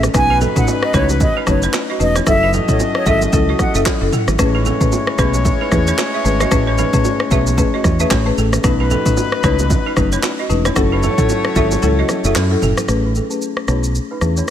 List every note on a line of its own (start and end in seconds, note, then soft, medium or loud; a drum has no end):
0.03 cross-stick loud
0.03 low bongo medium
0.03 shaker medium
0.14 0.44 B1 loud
0.14 1.97 F#3 medium
0.14 0.52 A3 loud
0.14 0.53 C#4 medium
0.14 0.53 D#4 medium
0.14 1.96 D#4 medium
0.14 1.96 B4 loud
0.14 0.53 B4 loud
0.14 0.38 G#5 loud
0.14 kick loud
0.14 cross-stick loud
0.14 low conga medium
0.14 shaker medium
0.30 0.39 D#4 medium
0.30 0.38 B4 medium
0.41 0.53 C#4 medium
0.41 0.53 A4 medium
0.41 low conga medium
0.41 shaker medium
0.56 0.91 A3 medium
0.56 0.91 C#4 medium
0.56 0.91 D#4 medium
0.56 0.91 B4 medium
0.56 0.66 F#5 medium
0.56 kick medium
0.56 mid tom loud
0.56 shaker medium
0.68 high bongo medium
0.68 shaker medium
0.83 0.93 D#5 medium
0.83 cross-stick loud
0.93 1.24 C#2 loud
0.93 1.18 A3 medium
0.93 1.19 C#4 medium
0.93 1.19 D#4 medium
0.93 1.06 E4 medium
0.93 1.19 B4 medium
0.93 1.06 C#5 medium
0.93 1.08 C#5 medium
0.93 kick medium
0.93 cross-stick medium
0.93 low bongo medium
0.93 shaker medium
1.09 low bongo medium
1.09 shaker medium
1.20 1.34 D#5 medium
1.20 kick loud
1.20 low conga medium
1.20 shaker medium
1.37 1.45 D#4 medium
1.37 1.45 B4 medium
1.47 1.66 F#1 loud
1.47 1.68 A3 medium
1.47 1.68 C#4 medium
1.47 1.68 D#4 medium
1.47 1.68 B4 medium
1.47 1.61 C#5 medium
1.47 kick medium
1.47 cross-stick medium
1.47 low bongo medium
1.47 shaker soft
1.62 1.72 E4 medium
1.62 1.72 C#5 medium
1.62 shaker medium
1.73 cross-stick medium
1.73 clap medium
1.73 high bongo medium
1.73 shaker medium
1.90 1.98 F#4 medium
1.90 1.98 D#5 medium
2.00 2.19 E1 medium
2.00 2.25 A3 medium
2.00 2.25 C#4 medium
2.00 2.25 D#4 medium
2.00 2.25 B4 medium
2.00 2.14 D#5 medium
2.00 shaker medium
2.16 2.25 E4 medium
2.16 2.25 C#5 medium
2.16 cross-stick medium
2.16 low bongo medium
2.16 shaker medium
2.26 2.57 F#1 loud
2.26 2.65 F#3 loud
2.26 4.09 A3 medium
2.26 2.65 C#4 medium
2.26 2.65 E4 medium
2.26 4.09 F#4 medium
2.26 2.65 A4 loud
2.26 4.09 D#5 loud
2.26 2.50 E5 loud
2.26 kick loud
2.26 cross-stick loud
2.26 low conga medium
2.26 shaker medium
2.43 2.52 D#4 medium
2.43 2.51 B4 medium
2.53 2.66 C#4 medium
2.53 2.65 A4 medium
2.53 low conga medium
2.53 shaker medium
2.68 3.04 F#3 medium
2.68 3.04 C#4 medium
2.68 3.04 E4 medium
2.68 3.04 A4 medium
2.68 2.79 C#5 medium
2.68 kick medium
2.68 mid tom medium
2.68 shaker medium
2.80 high bongo medium
2.80 shaker medium
2.95 3.05 C#5 medium
2.95 cross-stick loud
3.06 3.25 G#1 medium
3.06 3.31 F#3 medium
3.06 3.31 C#4 medium
3.06 3.31 E4 medium
3.06 3.19 G#4 medium
3.06 3.31 A4 medium
3.06 3.18 E5 medium
3.06 3.20 E5 medium
3.06 kick medium
3.06 low bongo medium
3.06 shaker medium
3.22 low bongo medium
3.22 shaker medium
3.33 3.52 C#2 loud
3.33 3.54 F#3 medium
3.33 3.54 C#4 medium
3.33 3.54 E4 medium
3.33 3.54 A4 loud
3.33 kick medium
3.33 low conga medium
3.33 shaker medium
3.49 3.58 F#4 medium
3.49 3.57 D#5 medium
3.59 3.73 F#5 medium
3.59 kick medium
3.59 cross-stick medium
3.59 low bongo medium
3.59 shaker medium
3.74 3.83 F#1 loud
3.74 3.94 F#3 medium
3.74 3.94 C#4 medium
3.74 3.94 E4 medium
3.74 3.84 G#4 medium
3.74 3.94 A4 medium
3.74 3.84 E5 medium
3.74 shaker medium
3.86 3.99 E4 medium
3.86 3.98 C#5 medium
3.86 kick loud
3.86 cross-stick medium
3.86 clap medium
3.86 high bongo medium
3.86 shaker medium
4.01 4.09 F#1 medium
4.01 4.20 F#3 medium
4.01 4.20 C#4 medium
4.01 4.20 E4 medium
4.01 4.20 A4 medium
4.12 4.25 C#4 medium
4.12 4.25 A4 medium
4.12 mid tom medium
4.12 shaker medium
4.28 4.36 G#1 medium
4.28 cross-stick medium
4.28 low bongo medium
4.28 shaker medium
4.39 4.69 A1 loud
4.39 8.33 G#3 medium
4.39 4.77 A3 medium
4.39 4.77 C#4 medium
4.39 8.33 E4 medium
4.39 4.77 G#4 medium
4.39 4.77 B4 loud
4.39 8.33 C#5 loud
4.39 kick loud
4.39 cross-stick loud
4.39 low conga medium
4.39 shaker medium
4.55 4.64 D#4 medium
4.55 4.63 B4 medium
4.65 4.78 C#4 medium
4.65 4.78 A4 medium
4.65 low conga medium
4.65 shaker medium
4.80 5.16 A3 medium
4.80 5.16 C#4 medium
4.80 5.16 G#4 medium
4.80 5.16 B4 medium
4.80 kick medium
4.80 mid tom medium
4.80 shaker medium
4.92 high bongo medium
4.92 shaker medium
5.07 cross-stick loud
5.18 5.49 B1 medium
5.18 5.43 A3 medium
5.18 5.43 C#4 medium
5.18 5.31 E4 medium
5.18 5.44 G#4 medium
5.18 5.44 B4 medium
5.18 5.31 C#5 medium
5.18 kick medium
5.18 cross-stick medium
5.18 low bongo medium
5.18 shaker medium
5.34 low bongo medium
5.34 shaker medium
5.45 kick loud
5.45 low conga medium
5.45 shaker medium
5.61 5.70 D#4 medium
5.61 5.69 B4 medium
5.71 5.91 E2 loud
5.71 5.93 A3 medium
5.71 5.93 C#4 medium
5.71 5.93 G#4 medium
5.71 5.93 B4 medium
5.71 kick medium
5.71 cross-stick medium
5.71 low bongo medium
5.71 shaker medium
5.87 5.97 E4 medium
5.87 5.96 C#5 medium
5.87 shaker medium
5.98 cross-stick medium
5.98 clap medium
5.98 high bongo medium
5.98 shaker medium
6.14 6.23 G#4 medium
6.14 6.22 E5 medium
6.24 6.44 G#1 loud
6.24 6.49 A3 medium
6.24 6.50 C#4 medium
6.24 6.50 G#4 medium
6.24 6.50 B4 medium
6.24 shaker medium
6.40 6.50 F#4 medium
6.40 6.49 D#5 medium
6.40 cross-stick loud
6.40 low bongo medium
6.40 shaker medium
6.51 6.82 A1 loud
6.51 6.90 A3 loud
6.51 6.90 C#4 medium
6.51 6.90 G#4 medium
6.51 6.90 B4 loud
6.51 kick loud
6.51 cross-stick medium
6.51 low conga medium
6.51 shaker medium
6.67 6.76 E4 medium
6.67 6.76 C#5 medium
6.78 6.90 D#4 medium
6.78 6.90 B4 medium
6.78 low conga medium
6.78 shaker medium
6.93 7.28 A3 medium
6.93 7.29 C#4 medium
6.93 7.29 G#4 medium
6.93 7.29 B4 medium
6.93 kick medium
6.93 mid tom loud
6.93 shaker medium
7.05 high bongo medium
7.05 shaker medium
7.20 cross-stick loud
7.31 7.61 B1 medium
7.31 7.56 A3 medium
7.31 7.56 C#4 medium
7.31 7.56 G#4 medium
7.31 7.44 G#4 medium
7.31 7.56 B4 medium
7.31 7.43 E5 medium
7.31 kick medium
7.31 low bongo medium
7.31 shaker medium
7.47 low bongo medium
7.47 shaker medium
7.58 7.79 A3 medium
7.58 7.79 C#4 medium
7.58 7.79 G#4 medium
7.58 7.79 B4 loud
7.58 kick medium
7.58 low conga medium
7.58 shaker medium
7.74 7.83 F#4 medium
7.74 7.82 D#5 medium
7.84 8.03 E2 medium
7.84 kick medium
7.84 cross-stick medium
7.84 low bongo medium
7.84 shaker medium
8.00 8.19 A3 medium
8.00 8.19 C#4 medium
8.00 8.19 G#4 medium
8.00 8.09 G#4 medium
8.00 8.19 B4 medium
8.00 8.09 E5 medium
8.00 shaker medium
8.11 8.30 A1 medium
8.11 8.23 E4 medium
8.11 8.23 C#5 medium
8.11 kick loud
8.11 cross-stick medium
8.11 clap medium
8.11 high bongo medium
8.11 shaker medium
8.26 8.45 A3 medium
8.26 8.45 C#4 medium
8.26 8.45 G#4 medium
8.26 8.45 B4 medium
8.38 8.57 A1 medium
8.38 8.50 C#4 medium
8.38 8.50 A4 medium
8.38 shaker medium
8.53 cross-stick loud
8.53 low bongo medium
8.53 shaker medium
8.64 8.94 B1 loud
8.64 10.46 F#3 medium
8.64 9.02 A3 loud
8.64 9.02 C#4 medium
8.64 10.46 D#4 medium
8.64 9.02 D#4 medium
8.64 10.46 B4 loud
8.64 9.02 B4 loud
8.64 kick loud
8.64 cross-stick loud
8.64 low conga medium
8.64 shaker medium
8.80 8.89 D#4 medium
8.80 8.88 B4 medium
8.91 9.03 C#4 medium
8.91 9.03 A4 medium
8.91 low conga medium
8.91 shaker medium
9.06 9.41 A3 medium
9.06 9.41 C#4 medium
9.06 9.41 D#4 medium
9.06 9.41 B4 medium
9.06 kick medium
9.06 mid tom medium
9.06 shaker medium
9.17 high bongo medium
9.17 shaker medium
9.32 cross-stick loud
9.43 9.74 C#2 medium
9.43 9.68 A3 medium
9.43 9.68 C#4 medium
9.43 9.68 D#4 medium
9.43 9.56 E4 medium
9.43 9.69 B4 medium
9.43 9.56 C#5 medium
9.43 kick medium
9.43 cross-stick loud
9.43 low bongo medium
9.43 shaker medium
9.59 low bongo medium
9.59 shaker medium
9.70 kick medium
9.70 low conga medium
9.70 shaker medium
9.86 9.95 D#4 medium
9.86 9.94 B4 medium
9.96 10.16 F#1 medium
9.96 10.18 A3 medium
9.96 10.18 C#4 medium
9.96 10.18 D#4 medium
9.96 10.18 B4 medium
9.96 kick medium
9.96 cross-stick medium
9.96 low bongo medium
9.96 shaker medium
10.12 10.21 E4 medium
10.12 10.21 C#5 medium
10.12 shaker medium
10.23 cross-stick medium
10.23 clap medium
10.23 high bongo medium
10.23 shaker medium
10.39 10.48 F#4 medium
10.39 10.47 D#5 medium
10.49 10.69 E1 medium
10.49 10.74 A3 medium
10.49 10.75 C#4 medium
10.49 10.75 D#4 medium
10.49 10.75 B4 medium
10.49 shaker medium
10.65 10.75 E4 medium
10.65 10.74 C#5 medium
10.65 cross-stick loud
10.65 low bongo medium
10.65 shaker medium
10.76 11.06 F#1 loud
10.76 11.14 F#3 medium
10.76 12.58 A3 medium
10.76 11.14 C#4 medium
10.76 11.14 E4 medium
10.76 12.58 F#4 medium
10.76 11.15 A4 loud
10.76 12.58 C#5 loud
10.76 kick loud
10.76 cross-stick loud
10.76 low conga medium
10.76 shaker medium
10.92 11.01 D#4 medium
10.92 11.00 B4 medium
11.03 11.16 C#4 medium
11.03 11.15 A4 medium
11.03 low conga medium
11.03 shaker medium
11.18 11.53 F#3 medium
11.18 11.53 C#4 medium
11.18 11.53 E4 medium
11.18 11.53 A4 medium
11.18 kick medium
11.18 mid tom medium
11.18 shaker medium
11.29 high bongo medium
11.29 shaker medium
11.45 cross-stick loud
11.56 11.75 G#1 medium
11.56 11.81 F#3 medium
11.56 11.81 C#4 medium
11.56 11.81 E4 medium
11.56 11.69 G#4 medium
11.56 11.81 A4 medium
11.56 11.68 E5 medium
11.56 kick medium
11.56 high bongo medium
11.56 low bongo medium
11.56 shaker medium
11.71 high bongo medium
11.71 low bongo medium
11.71 shaker medium
11.82 12.02 C#2 medium
11.82 12.03 F#3 medium
11.82 12.03 C#4 medium
11.82 12.04 E4 medium
11.82 12.04 A4 loud
11.82 low conga medium
11.82 shaker medium
11.99 12.07 F#4 medium
11.99 12.07 D#5 medium
12.09 cross-stick medium
12.09 low bongo medium
12.09 shaker medium
12.24 12.32 F#1 loud
12.24 12.43 F#3 medium
12.24 12.43 C#4 medium
12.24 12.43 E4 medium
12.24 12.34 G#4 medium
12.24 12.43 A4 medium
12.24 12.33 E5 medium
12.24 shaker medium
12.35 12.55 F#2 loud
12.35 12.48 E4 medium
12.35 12.48 C#5 medium
12.35 cross-stick medium
12.35 clap medium
12.35 high bongo medium
12.35 shaker medium
12.51 12.70 F#3 medium
12.51 12.70 C#4 medium
12.51 12.70 E4 medium
12.51 12.70 A4 medium
12.62 12.73 F#1 medium
12.62 12.75 C#4 medium
12.62 12.74 A4 medium
12.62 mid tom medium
12.62 shaker medium
12.77 cross-stick loud
12.77 low bongo medium
12.77 shaker medium
12.88 13.19 A1 loud
12.88 13.27 A3 medium
12.88 13.27 C#4 medium
12.88 13.27 G#4 medium
12.88 13.27 B4 medium
12.88 cross-stick medium
12.88 shaker medium
13.05 13.14 D#4 soft
13.05 13.13 B4 medium
13.15 13.28 C#4 medium
13.15 13.27 A4 medium
13.15 shaker medium
13.30 13.65 A3 medium
13.30 13.66 C#4 medium
13.30 13.66 G#4 medium
13.30 13.66 B4 medium
13.30 shaker medium
13.42 shaker medium
13.57 cross-stick medium
13.68 13.98 B1 medium
13.68 13.93 A3 medium
13.68 13.93 C#4 medium
13.68 13.81 E4 medium
13.68 13.93 G#4 medium
13.68 13.93 B4 medium
13.68 13.81 C#5 medium
13.68 cross-stick medium
13.68 shaker medium
13.84 shaker medium
13.95 shaker medium
14.11 14.20 D#4 medium
14.11 14.19 B4 medium
14.21 14.40 E2 medium
14.21 14.42 A3 medium
14.21 14.42 C#4 medium
14.21 14.43 G#4 medium
14.21 14.43 B4 medium
14.21 cross-stick medium
14.21 shaker soft
14.37 14.46 E4 medium
14.37 14.46 C#5 medium
14.37 shaker medium